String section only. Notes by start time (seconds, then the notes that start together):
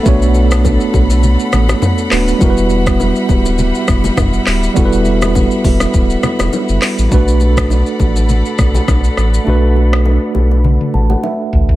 Already playing: D4 A4 F#5 B5
2.41 G3 E5
7.12 A4 D5 F#5 B5